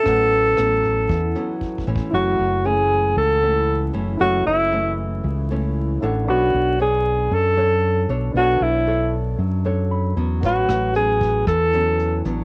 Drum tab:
HH |x--x--x--x--x--x--------|------------------------|------------------------|------------------------|
SD |r-----r-----------------|------------------------|------------------------|------------------------|
BD |o--------o--o-----o-o-o-|------------------------|------------------------|------------------------|

HH |------------------------|x--x--x--x--x--x--x--x--|
SD |------------------------|---r--------r-----------|
BD |------------------------|o--------o--o-----------|